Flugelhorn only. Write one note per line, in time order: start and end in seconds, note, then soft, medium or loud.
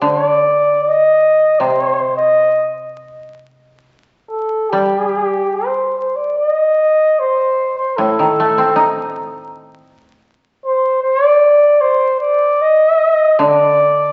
0.03 0.26 C5 medium
0.26 0.79 D5 medium
0.83 1.61 D#5 medium
1.60 2.16 C5 medium
2.17 2.71 D#5 medium
4.30 4.72 A4 medium
4.70 5.57 G4 medium
5.56 5.97 C5 medium
5.98 6.18 C5 medium
6.16 6.37 D5 medium
6.37 6.48 D5 medium
6.48 7.21 D#5 medium
7.19 7.77 C5 medium
7.78 7.99 C5 medium
7.97 9.14 A4 medium
10.66 11.01 C5 medium
11.03 11.25 C5 loud
11.25 11.82 D5 loud
11.81 12.20 C5 medium
12.20 12.63 D5 medium
12.61 13.39 D#5 loud
13.39 14.12 D5 medium